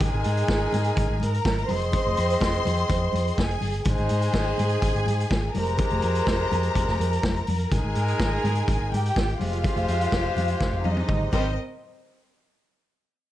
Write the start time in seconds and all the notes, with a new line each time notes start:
0.00 G#1 G#3 D#4 G#4 A#4 G#5, kick, closed hi-hat, muted conga
0.14 G#1
0.24 G#2, closed hi-hat
0.37 closed hi-hat
0.48 G#1, kick, snare, high conga
0.72 G#2, closed hi-hat, muted conga, low conga
0.84 closed hi-hat
0.96 G#1, kick, closed hi-hat, muted conga
1.10 G#1
1.20 G#2 A#4 A#5, closed hi-hat, muted conga
1.34 closed hi-hat
1.45 G#1, kick, snare, high conga
1.58 closed hi-hat
1.68 F1 C4 G#4 C5 D#5 C6, open hi-hat, high conga
1.81 closed hi-hat
1.92 kick, closed hi-hat, muted conga
2.06 F1
2.17 F2, closed hi-hat
2.30 closed hi-hat
2.40 F1, kick, snare, high conga
2.54 closed hi-hat
2.65 F2, closed hi-hat, muted conga, low conga
2.77 closed hi-hat
2.89 F2, kick, closed hi-hat, muted conga
3.13 F2, closed hi-hat, muted conga
3.28 closed hi-hat
3.37 F#1 G#4 G#5, kick, snare, high conga
3.51 closed hi-hat
3.61 G1, open hi-hat, high conga
3.73 closed hi-hat
3.85 G#1 G#3 D#4 G#4 C5 G#5, kick, closed hi-hat, muted conga
3.97 G#1, closed hi-hat
4.09 G#2, closed hi-hat
4.22 closed hi-hat
4.33 G#1, kick, snare, high conga
4.58 G#2, closed hi-hat, muted conga, low conga
4.69 closed hi-hat
4.82 G#1, kick, closed hi-hat, muted conga
4.95 G#1, closed hi-hat
5.06 G#2, closed hi-hat, muted conga
5.20 closed hi-hat
5.31 G#1, kick, snare, high conga
5.54 F1 G#3 G4 A#4 C5 A#5, open hi-hat, high conga
5.67 closed hi-hat
5.78 kick, closed hi-hat, muted conga
5.90 F1, closed hi-hat
6.02 F2, closed hi-hat
6.15 closed hi-hat
6.27 F1, kick, snare, high conga
6.51 F2, closed hi-hat, muted conga, low conga
6.63 closed hi-hat
6.75 F1, kick, closed hi-hat, muted conga
6.88 F1, snare
6.99 F2, closed hi-hat, muted conga
7.13 closed hi-hat
7.23 F1, kick, snare, high conga
7.36 closed hi-hat
7.47 F2, open hi-hat, high conga
7.59 closed hi-hat
7.71 G#1 G#3 D#4 G#4 A#4 G#5, kick, closed hi-hat, muted conga
7.84 G#1
7.95 G#2, closed hi-hat
8.08 closed hi-hat
8.20 G#1, kick, snare, high conga
8.44 G#2, closed hi-hat, muted conga, low conga
8.55 closed hi-hat
8.68 G#1, kick, closed hi-hat, muted conga
8.80 G#1
8.92 G#2 G4 G5, closed hi-hat, muted conga
9.06 closed hi-hat
9.16 G#1, kick, snare, high conga
9.30 closed hi-hat
9.40 F1 G#3 F4 G4 C5 F5, open hi-hat, high conga
9.53 closed hi-hat
9.64 kick, closed hi-hat, muted conga
9.76 F1, closed hi-hat
9.88 F2, closed hi-hat
10.01 closed hi-hat
10.12 F1, kick, snare, high conga
10.36 F2, closed hi-hat, muted conga, low conga
10.48 closed hi-hat
10.60 F1, kick, snare, muted conga
10.73 F1
10.84 F2 D#4 D#5, high tom, muted conga
10.97 high tom
11.08 G#1, kick, mid tom, high conga
11.32 G#1 G3 C4 D#4 A#4 C5 D#5, kick, crash, muted conga